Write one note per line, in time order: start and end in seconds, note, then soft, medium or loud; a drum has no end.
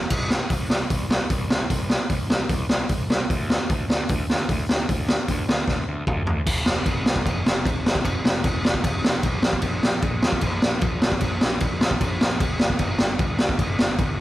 0.10 0.38 C2 loud
0.10 kick loud
0.10 crash medium
0.30 snare loud
0.50 0.64 C2 medium
0.50 kick loud
0.50 open hi-hat medium
0.70 0.84 C2 medium
0.70 snare loud
0.90 1.04 C2 medium
0.90 kick loud
0.90 open hi-hat medium
1.09 1.23 C2 medium
1.09 snare loud
1.30 1.43 C2 medium
1.30 kick loud
1.30 open hi-hat medium
1.47 1.62 C2 medium
1.47 snare loud
1.70 1.97 C2 medium
1.70 kick loud
1.70 open hi-hat medium
1.90 snare loud
2.10 2.24 C2 loud
2.10 kick loud
2.10 open hi-hat medium
2.28 2.42 C2 medium
2.28 snare loud
2.49 2.63 C2 medium
2.49 kick loud
2.49 open hi-hat medium
2.69 2.83 C2 medium
2.69 snare loud
2.89 3.04 C2 medium
2.89 kick loud
2.89 open hi-hat medium
3.08 3.22 C2 medium
3.08 snare loud
3.29 3.57 D2 medium
3.29 kick loud
3.29 open hi-hat medium
3.50 snare loud
3.69 3.83 D2 medium
3.69 kick loud
3.69 open hi-hat medium
3.88 4.02 D2 medium
3.88 snare loud
4.09 4.23 D2 medium
4.09 kick loud
4.09 open hi-hat medium
4.30 4.43 D2 medium
4.30 snare loud
4.49 4.63 D2 medium
4.49 kick loud
4.49 open hi-hat medium
4.69 4.83 D2 medium
4.69 snare loud
4.89 5.16 D2 loud
4.89 kick loud
4.89 open hi-hat medium
5.08 snare loud
5.28 5.42 D2 medium
5.28 kick loud
5.28 open hi-hat medium
5.48 5.62 D2 medium
5.48 snare loud
5.68 5.82 D2 medium
5.68 kick loud
5.68 snare medium
5.88 6.01 D2 medium
6.07 6.21 D2 medium
6.07 kick loud
6.07 mid tom medium
6.25 6.40 D2 medium
6.25 floor tom loud
6.47 6.65 F1 medium
6.47 kick loud
6.47 crash loud
6.47 crash medium
6.66 6.85 F1 medium
6.66 snare loud
6.86 7.04 F1 medium
6.86 kick loud
6.86 crash medium
7.05 7.24 C2 medium
7.05 snare loud
7.16 kick loud
7.26 7.44 F1 loud
7.26 kick loud
7.26 crash medium
7.46 7.64 F1 medium
7.46 snare loud
7.66 7.84 F1 loud
7.66 kick loud
7.66 crash medium
7.85 8.03 F1 medium
7.85 snare loud
7.95 kick medium
8.04 8.23 F1 medium
8.04 kick loud
8.04 crash medium
8.24 8.42 F1 medium
8.24 snare loud
8.44 8.62 F1 loud
8.44 kick loud
8.44 crash medium
8.63 8.82 F1 medium
8.63 snare loud
8.74 kick medium
8.84 9.02 F1 medium
8.84 kick loud
8.84 crash medium
9.03 9.21 F1 medium
9.03 snare loud
9.23 9.41 B1 medium
9.23 kick loud
9.23 crash medium
9.42 9.61 A#1 medium
9.42 snare loud
9.53 kick medium
9.62 9.81 A#1 loud
9.62 kick medium
9.62 crash medium
9.82 10.01 A#1 loud
9.82 snare loud
10.02 10.21 A#1 medium
10.02 kick loud
10.02 crash medium
10.22 10.42 F2 loud
10.22 snare loud
10.32 kick loud
10.41 10.61 A#1 medium
10.41 kick loud
10.41 crash medium
10.62 10.80 A#1 medium
10.62 snare loud
10.81 11.00 A#1 loud
10.81 kick loud
10.81 crash medium
11.02 11.20 A#1 medium
11.02 snare loud
11.12 kick medium
11.21 11.40 A#1 loud
11.21 kick medium
11.21 crash medium
11.41 11.60 A#1 medium
11.41 snare loud
11.60 11.79 A#1 medium
11.60 kick loud
11.60 crash medium
11.81 12.00 A#1 loud
11.81 snare loud
11.91 kick medium
12.01 12.19 A#1 medium
12.01 kick loud
12.01 crash medium
12.21 12.39 A#1 medium
12.21 snare loud
12.40 12.76 F#1 medium
12.40 kick loud
12.40 crash medium
12.59 snare loud
12.70 kick medium
12.79 12.98 G1 loud
12.79 kick medium
12.79 crash medium
12.99 13.18 G1 medium
12.99 snare loud
13.19 13.37 G1 loud
13.19 kick loud
13.19 crash medium
13.39 13.58 D2 medium
13.39 snare loud
13.49 kick loud
13.59 13.77 G1 loud
13.59 kick loud
13.59 crash medium
13.79 13.97 G1 medium
13.79 snare loud
13.98 14.16 G1 loud
13.98 kick loud
13.98 crash medium